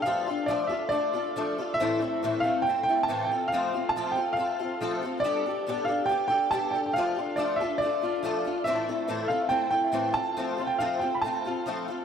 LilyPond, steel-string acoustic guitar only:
\new Staff \with { instrumentName = "Steel-string acoustic guitar" } { \time 4/4 \key f \lydian \tempo 4 = 140 <f a d' f' a'>8 <d' f' a'>8 <f a d' f' a'>8 <d' f' a'>8 <a d' f' a'>8 <d' f' a'>8 <f a d' f' a'>8 <d' f' a'>8 | <a, e a c' e' a'>8 <a c' e' a'>8 <a, e a c' e' a'>8 <a c' e' a'>8 <a c' e' a'>8 <a c' e' a'>8 <a, e a c' e' a'>8 <c' f' a'>8 | <f a c' f' a'>8 <c' f' a'>8 <f a c' f' a'>8 <c' f' a'>8 <a c' f' a'>8 <c' f' a'>8 <f a c' f' a'>8 <c' f' a'>8 | <g b d' g' a'>8 <d' g' a'>8 <g b d' g' a'>8 <d' g' a'>8 <b d' g' a'>8 <d' g' a'>8 <g b d' g' a'>8 <d' g' a'>8 |
<f a d' f' a'>8 <d' f' a'>8 <f a d' f' a'>8 <d' f' a'>8 <a d' f' a'>8 <d' f' a'>8 <f a d' f' a'>8 <d' f' a'>8 | <a, e a c' e' a'>8 <a c' e' a'>8 <a, e a c' e' a'>8 <a c' e' a'>8 <a c' e' a'>8 <a c' e' a'>8 <a, e a c' e' a'>8 <c' f' a'>8 | <f a c' f' a'>8 <c' f' a'>8 <f a c' f' a'>8 <c' f' a'>8 <a c' f' a'>8 <c' f' a'>8 <f a c' f' a'>8 <c' f' a'>8 | }